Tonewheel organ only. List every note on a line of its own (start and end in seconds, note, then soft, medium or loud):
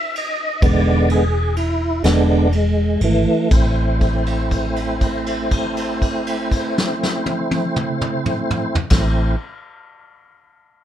0.00 0.15 E5 medium
0.18 0.62 D#5 medium
0.62 1.24 D3 medium
0.62 1.25 G#3 medium
0.62 1.25 B3 medium
0.62 1.09 D5 medium
1.11 1.56 G#4 medium
1.57 2.03 E4 medium
2.04 2.48 D3 medium
2.04 2.48 G#3 soft
2.04 2.49 B3 medium
2.04 2.52 D4 loud
2.55 3.01 G#3 medium
3.04 3.49 E3 medium
3.04 3.51 A3 loud
3.52 8.76 A3 medium
3.52 8.76 C4 medium
3.52 8.76 E4 medium
3.52 8.76 C5 medium
8.91 9.36 A3 medium
8.91 9.36 C4 medium
8.91 9.36 E4 medium
8.91 9.36 C5 medium